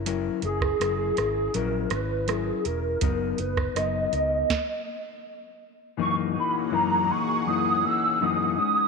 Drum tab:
HH |x-x-x-x-x-x-x-x-|x-x-x-x---------|----------------|
SD |---rr-r---r-r---|---rr---o-------|----------------|
BD |---o------------|o--o----o-------|----------------|